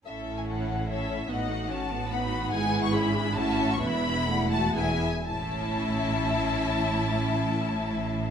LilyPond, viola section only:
\new Staff \with { instrumentName = "Viola section" } { \time 3/4 \key a \major \tempo 4 = 134 << { e'2. | dis'4 cis'8 b8 dis'4 | e'2 e'4 | d'4 e'4 e'8 r8 |
e'2.~ | e'2. | } \\ { cis'2 cis'4 | b8 a8 cis'4 b4 | b4 cis'8 d'8 cis'4 | b4 a4 b8 r8 |
cis'2.~ | cis'2. | } >> }